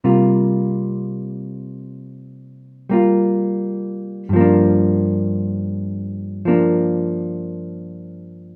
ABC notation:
X:1
M:4/4
L:1/8
Q:"Swing" 1/4=56
K:Cmix
V:1 name="Hollow-body jazz guitar"
[C,G,B,F]4- [C,G,B,F] [G,B,F]3 | [G,,F,B,D]4 [F,B,D]4 |]